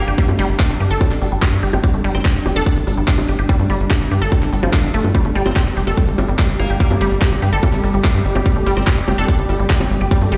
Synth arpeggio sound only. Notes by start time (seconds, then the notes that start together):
0.08 G4
0.18 G3
0.29 A3
0.39 G3
0.80 G4
0.91 A4
1.01 G3
1.22 G3
1.32 G3
1.42 G3
1.63 G4
1.73 G4
1.84 G3
1.94 A3
2.04 G3
2.46 G4
2.56 A4
2.66 G3
2.87 G3
2.97 G3
3.08 G3
3.28 G4
3.39 G4
3.49 G3
3.60 A3
3.70 G3
4.11 G4
4.22 A4
4.32 G3
4.53 G3
4.63 F3
4.94 A3
5.04 F3
5.15 G3
5.25 A3
5.35 G3
5.56 G4
5.77 G4
5.87 A4
5.97 G3
6.18 G3
6.28 G3
6.39 G3
6.70 G4
6.80 G3
6.91 A3
7.01 G3
7.22 G4
7.42 G4
7.53 A4
7.63 G3
7.84 G3
7.94 G3
8.04 G3
8.35 G4
8.46 G3
8.56 A3
8.66 G3
8.87 G4
9.08 G4
9.18 A4
9.28 G3
9.49 G3
9.59 G3
9.70 G3
10.01 G4
10.11 G3
10.22 A3
10.32 G3